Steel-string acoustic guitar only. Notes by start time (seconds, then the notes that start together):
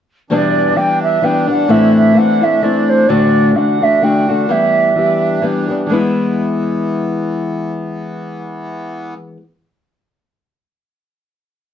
0.30 E2 B2 E3 G3 B3 D4
0.76 E3 G3 B3 D4
1.22 E3 G3 B3 D4
1.47 E3 G3 B3 D4
1.68 A2 E3 A3 C4 E4
2.15 E3 A3 C4 E4
2.41 A3 C4 E4
2.62 E3 A3 C4 E4
3.08 D2 A2 D3 A3 D4 F#4
3.55 D3 A3 D4 F#4
3.81 D3 A3 D4 F#4
4.01 D3 A3 D4 F#4
4.28 D3 A3 D4 F#4
4.49 E3 G3 B3 G4
4.95 E3 G3 B3 G4
5.41 E3 G3 B3 G4
5.68 G3 B3 G4
5.87 E3 G#3
5.92 B3 E4